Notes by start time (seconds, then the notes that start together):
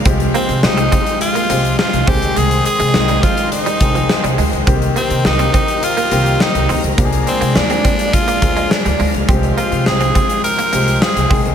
Already playing: G#3 F5
0.05 C2 F3 G#3 C4 G4 G5 C6, kick, closed hi-hat
0.20 closed hi-hat
0.34 A#3 C4, closed hi-hat
0.49 C3, muted clean electric guitar stroke, closed hi-hat
0.63 C2 F3 G#3 C4 D#4 G4, muted clean electric guitar stroke, snare
0.77 C4, closed hi-hat
0.92 C4, kick, closed hi-hat
1.06 closed hi-hat
1.21 F4, muted clean electric guitar stroke, closed hi-hat
1.35 A#3, closed hi-hat
1.49 C2 F3 G#3 A#3 C4 G4, closed hi-hat
1.65 closed hi-hat
1.79 F4, snare
1.93 C2, closed hi-hat
2.07 C2 D#3 G#3 C4 G4 G#4 C5 D#5 C6, kick, open hi-hat
2.22 C#2, closed hi-hat
2.36 C2 G#3 G#4, closed hi-hat
2.51 closed hi-hat
2.65 G#4, muted clean electric guitar stroke, closed hi-hat
2.80 C3 G#3, closed hi-hat
2.94 C2 D#3 G#3 C4 D#4, muted clean electric guitar stroke, snare
3.08 G3, closed hi-hat
3.23 F3 F4, kick, closed hi-hat
3.37 closed hi-hat
3.52 D#4, closed hi-hat
3.66 G3, closed hi-hat
3.80 C2 D#3 G#3 C4 G#4, muted clean electric guitar stroke, kick, closed hi-hat
3.95 F3, closed hi-hat
4.09 muted clean electric guitar stroke, snare
4.24 C2 G3, closed hi-hat
4.38 D2 G#3, open hi-hat
4.53 C#2, closed hi-hat
4.67 C2 D#3 A#3 C4 G4 D#5 A#5, kick, closed hi-hat
4.82 closed hi-hat
4.96 A#3 C4, closed hi-hat
5.10 C3, muted clean electric guitar stroke, closed hi-hat
5.24 C2 D#3 A#3 C4 D#4 G4, muted clean electric guitar stroke, snare
5.39 C4, closed hi-hat
5.54 C4, kick, closed hi-hat
5.68 closed hi-hat
5.83 F4, muted clean electric guitar stroke, closed hi-hat
5.97 A#3, closed hi-hat
6.11 C2 D#3 A#3 C4 G4, closed hi-hat
6.26 closed hi-hat
6.40 D#4, snare
6.55 C2, closed hi-hat
6.69 D2 C4, open hi-hat
6.84 C#2, closed hi-hat
6.97 C2 F3 G#3 A#3 D4 G4 D5 F5, kick, closed hi-hat
7.05 G#4
7.13 closed hi-hat
7.27 C4, muted clean electric guitar stroke, closed hi-hat
7.41 C3 A#3, closed hi-hat
7.55 D2 F3 A#3 D4 G#4, muted clean electric guitar stroke, snare
7.70 C4, closed hi-hat
7.85 C4, kick, closed hi-hat
7.99 closed hi-hat
8.13 F4, kick, closed hi-hat
8.28 A#3, closed hi-hat
8.42 D2 F3 A#3 D4 G#4, muted clean electric guitar stroke, kick, closed hi-hat
8.57 G#3, closed hi-hat
8.71 D4, muted clean electric guitar stroke, snare
8.85 D2 G3, closed hi-hat
9.00 D2 G#3, open hi-hat
9.14 C#2, closed hi-hat
9.28 C2 F3 G#3 C4 G4 G5 C6, kick, closed hi-hat
9.43 closed hi-hat
9.58 A#3 F4, closed hi-hat
9.72 C3, muted clean electric guitar stroke, closed hi-hat
9.86 C2 F3 G#3 C4 G#4 G5, muted clean electric guitar stroke, snare
10.00 C4, closed hi-hat
10.15 C4, kick, closed hi-hat
10.29 closed hi-hat
10.44 A#4, muted clean electric guitar stroke, closed hi-hat
10.58 A#3, closed hi-hat
10.72 C2 F3 G#3 A#3 C4 G4, closed hi-hat
10.88 closed hi-hat
11.02 G#4, snare
11.16 C2, closed hi-hat
11.30 C2 D#3 G#3 C4 G#4 C5 D#5 G#5 D#6, kick, open hi-hat
11.45 C#2, closed hi-hat